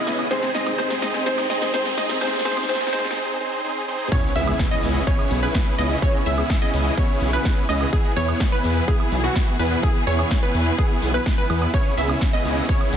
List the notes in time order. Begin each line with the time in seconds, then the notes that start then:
Already playing: C#3 B3 C#4 E4 G#4 D#5, riser
0.06 C#3 C#4 E4 G#4 B4, snare, open hi-hat, high woodblock, shaker
0.19 closed hi-hat, high woodblock, shaker
0.30 G#2 C3 D#3 C4 D#4 G#4 C5, snare, closed hi-hat, shaker
0.43 snare, closed hi-hat
0.55 C4 D#4 G#4 D#5, snare, open hi-hat, shaker
0.66 C3 C4 D#4 G#4 C5, snare, closed hi-hat, high woodblock, shaker
0.78 C3 C4 D#4 G#4 C5, snare, closed hi-hat, shaker
0.90 snare, closed hi-hat
1.02 C4 D#4 G#4 D#5, snare, open hi-hat, shaker
1.14 C3 C4 D#4 G#4 C5, snare, shaker
1.26 C3 C4 D#4 G#4 C5, snare, closed hi-hat, shaker
1.38 snare, closed hi-hat, high woodblock
1.50 C4 D#4 G#4 D#5, snare, open hi-hat, shaker
1.61 C3 C4 D#4 G#4 C5, snare, closed hi-hat, shaker
1.73 C3 C4 D#4 G#4 C5, snare, closed hi-hat, shaker
1.86 snare, closed hi-hat
1.97 C4 D#4 G#4 D#5, snare, open hi-hat, shaker
2.09 C3 C4 D#4 G#4 C5, snare, closed hi-hat, shaker
2.21 C3 C4 D#4 G#4 C5, snare, closed hi-hat, shaker
2.27 snare
2.33 snare, closed hi-hat
2.39 snare
2.45 C3 C4 D#4 G#4 C5, snare, open hi-hat, shaker
2.51 snare
2.57 snare, closed hi-hat, high woodblock, shaker
2.63 snare
2.68 C3 C4 D#4 G#4 C5, snare, closed hi-hat, shaker
2.75 snare
2.81 snare, closed hi-hat
2.87 snare
2.92 C3 C4 D#4 G#4 C5, snare, open hi-hat, shaker
2.99 snare
3.05 snare, closed hi-hat, shaker
3.11 snare
3.17 C4 D#4 G#4 C5, swell
3.40 C4 D#4 G#4 C5
3.64 C4 D#4 G#4 C5
3.88 C4 D#4 G#4 C5
4.12 C#3 B3 C#4 E4 G#4 C#5, kick, closed hi-hat, crash, impact, shaker
4.24 closed hi-hat
4.36 C#2 B3 C#4 E4 G#4 E5, open hi-hat, shaker
4.47 closed hi-hat, high woodblock, shaker
4.59 kick, snare, closed hi-hat, shaker
4.71 B3 C#4 E4 G#4 D#5, closed hi-hat
4.83 C#2, open hi-hat, shaker
4.95 closed hi-hat, shaker
5.07 B3 C#4 E4 G#4 C#5, kick, closed hi-hat, shaker
5.19 closed hi-hat, high woodblock
5.31 B1, open hi-hat, shaker
5.43 B3 C#4 E4 G#4 B4, closed hi-hat, shaker
5.55 kick, snare, closed hi-hat, shaker
5.67 closed hi-hat
5.78 C#2 B3 C#4 E4 G#4 D#5, open hi-hat, shaker
5.90 closed hi-hat, shaker
6.02 B3 C#4 E4 G#4 C#5, kick, closed hi-hat, shaker
6.14 closed hi-hat
6.26 C#2 B3 C#4 E4 G#4 E5, open hi-hat, shaker
6.38 closed hi-hat, high woodblock, shaker
6.50 kick, snare, closed hi-hat, shaker
6.62 B3 C#4 E4 G#4 D#5, closed hi-hat
6.74 C#2, open hi-hat, shaker
6.86 closed hi-hat, shaker
6.97 B3 C#4 E4 G#4 C#5, kick, closed hi-hat, shaker
7.09 closed hi-hat
7.21 B1, open hi-hat, shaker
7.33 B3 C#4 E4 G#4 B4, closed hi-hat, shaker
7.45 kick, snare, closed hi-hat, shaker
7.57 closed hi-hat
7.69 C#2 B3 C#4 E4 G#4 D#5, open hi-hat, high woodblock, shaker
7.81 closed hi-hat, high woodblock, shaker
7.93 E3 B3 E4 G#4, kick, closed hi-hat, shaker
8.05 closed hi-hat
8.16 E2 B3 E4 C#5, open hi-hat, shaker
8.28 closed hi-hat, high woodblock, shaker
8.40 kick, snare, closed hi-hat, shaker
8.52 B3 E4 B4, closed hi-hat
8.64 E2, open hi-hat, shaker
8.76 closed hi-hat, shaker
8.88 B3 E4 G#4, kick, closed hi-hat, shaker
9.00 closed hi-hat, high woodblock
9.12 B1, open hi-hat, shaker
9.24 B3 E4 F#4, closed hi-hat, shaker
9.36 kick, snare, closed hi-hat, shaker
9.48 closed hi-hat
9.59 E2 B3 E4 B4, open hi-hat, shaker
9.71 closed hi-hat, shaker
9.83 B3 C#4 E4 G#4, kick, closed hi-hat, shaker
9.95 closed hi-hat
10.07 E2 B3 E4 C#5, open hi-hat, shaker
10.19 closed hi-hat, high woodblock, shaker
10.31 kick, snare, closed hi-hat, shaker
10.43 B3 E4 B4, closed hi-hat
10.55 E2, open hi-hat, shaker
10.67 closed hi-hat, shaker
10.78 B3 E4 G#4, kick, closed hi-hat, shaker
10.90 closed hi-hat
11.02 B1, open hi-hat, shaker
11.14 B3 E4 B4, closed hi-hat, shaker
11.26 kick, snare, closed hi-hat, shaker
11.38 B3 E4 B4, closed hi-hat
11.50 E2, open hi-hat, high woodblock, shaker
11.62 closed hi-hat, high woodblock, shaker
11.74 C#3 B3 C#4 E4 G#4 C#5, kick, closed hi-hat, shaker
11.86 closed hi-hat
11.97 C#2 B3 C#4 E4 G#4 E5, open hi-hat, shaker
12.09 closed hi-hat, high woodblock, shaker
12.21 kick, snare, closed hi-hat, shaker
12.33 B3 C#4 E4 G#4 D#5, closed hi-hat
12.45 C#2, open hi-hat, shaker
12.57 closed hi-hat, shaker
12.69 B3 C#4 E4 G#4 C#5, kick, closed hi-hat, shaker
12.81 closed hi-hat, high woodblock
12.93 B1, open hi-hat, shaker